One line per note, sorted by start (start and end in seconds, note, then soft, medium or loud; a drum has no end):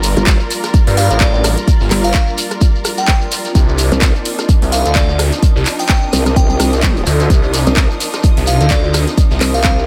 0.00 0.15 G1 medium
0.00 3.51 G3 medium
0.00 3.51 F4 medium
0.00 3.54 F4 medium
0.00 3.51 A#4 medium
0.00 3.55 A#4 medium
0.00 3.55 D5 medium
0.00 closed hi-hat medium
0.00 open hi-hat loud
0.00 shekere loud
0.17 0.38 G1 loud
0.17 closed hi-hat medium
0.17 shekere soft
0.27 kick loud
0.27 snare loud
0.27 clap loud
0.27 closed hi-hat medium
0.27 shekere medium
0.40 closed hi-hat soft
0.40 shekere soft
0.50 closed hi-hat medium
0.50 open hi-hat loud
0.50 shekere medium
0.64 cross-stick medium
0.64 snare medium
0.64 closed hi-hat medium
0.64 shekere soft
0.74 kick loud
0.74 closed hi-hat medium
0.74 shekere soft
0.87 1.08 G2 loud
0.87 snare medium
0.87 open hi-hat medium
0.87 shekere soft
0.97 1.06 F5 medium
0.97 closed hi-hat medium
0.97 open hi-hat loud
0.97 shekere medium
1.11 1.55 A1 medium
1.11 1.17 F5 medium
1.11 closed hi-hat medium
1.11 shekere soft
1.21 1.29 D5 medium
1.21 kick loud
1.21 snare loud
1.21 clap loud
1.21 closed hi-hat medium
1.21 shekere medium
1.34 1.41 D5 medium
1.34 shekere soft
1.44 cross-stick medium
1.44 closed hi-hat medium
1.44 open hi-hat loud
1.44 shekere loud
1.58 closed hi-hat medium
1.58 shekere soft
1.68 kick loud
1.68 closed hi-hat medium
1.68 shekere medium
1.80 1.89 G1 loud
1.80 snare soft
1.80 shekere soft
1.90 2.13 G1 medium
1.90 clap medium
1.90 closed hi-hat medium
1.90 open hi-hat loud
1.90 shekere medium
2.04 2.11 F5 medium
2.04 open hi-hat medium
2.04 shekere soft
2.14 kick loud
2.14 snare loud
2.14 clap loud
2.14 closed hi-hat medium
2.14 shekere medium
2.27 shekere soft
2.37 closed hi-hat medium
2.37 open hi-hat loud
2.37 shekere loud
2.51 cross-stick medium
2.51 closed hi-hat soft
2.51 shekere soft
2.61 kick loud
2.61 closed hi-hat medium
2.61 shekere medium
2.75 shekere soft
2.85 cross-stick medium
2.85 closed hi-hat medium
2.85 open hi-hat loud
2.85 shekere loud
2.98 3.45 G5 medium
2.98 snare soft
2.98 closed hi-hat soft
2.98 shekere soft
3.07 kick loud
3.07 snare loud
3.07 clap loud
3.07 closed hi-hat medium
3.07 shekere medium
3.21 closed hi-hat soft
3.21 shekere soft
3.31 snare medium
3.31 closed hi-hat medium
3.31 open hi-hat loud
3.31 shekere loud
3.45 snare soft
3.45 closed hi-hat soft
3.45 shekere soft
3.55 3.90 C2 loud
3.55 9.87 C4 medium
3.55 9.87 D4 medium
3.55 9.87 D#4 medium
3.55 9.87 F4 medium
3.55 kick loud
3.55 closed hi-hat medium
3.55 shekere medium
3.68 9.87 A#4 medium
3.68 shekere soft
3.77 9.87 D#6 medium
3.77 closed hi-hat medium
3.77 open hi-hat loud
3.77 shekere medium
3.92 4.13 C2 loud
3.92 closed hi-hat soft
3.92 shekere soft
4.02 kick loud
4.02 snare loud
4.02 clap loud
4.02 closed hi-hat medium
4.02 shekere medium
4.15 closed hi-hat soft
4.15 shekere soft
4.25 closed hi-hat medium
4.25 open hi-hat loud
4.25 shekere medium
4.39 cross-stick medium
4.39 snare medium
4.39 closed hi-hat soft
4.39 shekere soft
4.49 kick loud
4.49 closed hi-hat medium
4.49 shekere soft
4.62 4.83 C2 loud
4.62 open hi-hat medium
4.62 shekere soft
4.72 4.81 F5 medium
4.72 closed hi-hat medium
4.72 open hi-hat loud
4.72 shekere medium
4.86 5.30 D2 loud
4.86 4.92 F5 medium
4.86 closed hi-hat soft
4.86 shekere soft
4.95 5.04 D5 medium
4.95 kick loud
4.95 snare loud
4.95 clap loud
4.95 closed hi-hat medium
4.95 shekere medium
5.09 5.16 D5 medium
5.09 shekere soft
5.19 cross-stick medium
5.19 closed hi-hat medium
5.19 open hi-hat loud
5.19 shekere medium
5.32 snare medium
5.32 closed hi-hat medium
5.32 shekere soft
5.43 kick loud
5.43 closed hi-hat medium
5.43 shekere medium
5.56 5.64 C2 loud
5.56 snare soft
5.56 shekere soft
5.65 clap medium
5.65 closed hi-hat medium
5.65 open hi-hat loud
5.65 shekere medium
5.79 5.86 G5 medium
5.79 open hi-hat medium
5.79 shekere soft
5.89 5.98 G5 medium
5.89 kick loud
5.89 snare loud
5.89 clap loud
5.89 closed hi-hat medium
5.89 shekere medium
6.03 shekere soft
6.12 6.58 C2 loud
6.12 closed hi-hat medium
6.12 open hi-hat loud
6.12 shekere medium
6.26 cross-stick medium
6.26 closed hi-hat medium
6.26 shekere soft
6.36 6.45 G5 medium
6.36 kick loud
6.36 closed hi-hat medium
6.36 shekere medium
6.49 6.56 G5 medium
6.49 shekere soft
6.60 7.05 C2 loud
6.60 cross-stick medium
6.60 closed hi-hat medium
6.60 open hi-hat loud
6.60 shekere medium
6.73 snare soft
6.73 closed hi-hat medium
6.73 shekere soft
6.82 kick loud
6.82 snare loud
6.82 clap loud
6.82 closed hi-hat medium
6.82 shekere medium
6.96 closed hi-hat soft
6.96 shekere soft
7.06 7.28 D2 loud
7.06 snare medium
7.06 closed hi-hat medium
7.06 open hi-hat loud
7.06 shekere medium
7.19 snare soft
7.19 closed hi-hat medium
7.19 shekere soft
7.30 7.65 C2 loud
7.30 kick loud
7.30 closed hi-hat medium
7.30 shekere medium
7.43 shekere soft
7.54 closed hi-hat medium
7.54 open hi-hat loud
7.54 shekere medium
7.67 7.88 C2 loud
7.67 closed hi-hat medium
7.67 shekere soft
7.76 kick loud
7.76 snare loud
7.76 clap loud
7.76 closed hi-hat medium
7.76 shekere soft
7.90 closed hi-hat soft
7.90 shekere soft
8.00 closed hi-hat medium
8.00 open hi-hat loud
8.00 shekere medium
8.13 cross-stick medium
8.13 snare soft
8.13 closed hi-hat medium
8.13 shekere soft
8.23 kick loud
8.23 closed hi-hat medium
8.23 shekere medium
8.37 8.58 C2 loud
8.37 open hi-hat medium
8.37 shekere soft
8.47 8.56 F5 medium
8.47 closed hi-hat medium
8.47 open hi-hat loud
8.47 shekere medium
8.61 9.05 D2 loud
8.61 8.67 F5 medium
8.61 closed hi-hat medium
8.61 shekere soft
8.70 8.79 D5 medium
8.70 kick loud
8.70 snare loud
8.70 clap loud
8.70 closed hi-hat medium
8.70 shekere medium
8.84 8.91 D5 medium
8.84 shekere soft
8.94 cross-stick medium
8.94 closed hi-hat medium
8.94 open hi-hat loud
8.94 shekere medium
9.07 snare medium
9.07 closed hi-hat medium
9.07 shekere soft
9.17 kick loud
9.17 closed hi-hat medium
9.17 shekere soft
9.30 9.39 C2 loud
9.30 snare soft
9.30 shekere soft
9.41 9.86 C2 loud
9.41 clap medium
9.41 closed hi-hat medium
9.41 open hi-hat loud
9.41 shekere loud
9.54 9.61 F5 medium
9.54 open hi-hat medium
9.54 shekere soft
9.64 9.73 F5 medium
9.64 kick loud
9.64 snare loud
9.64 clap loud
9.64 closed hi-hat medium
9.64 shekere soft
9.78 shekere soft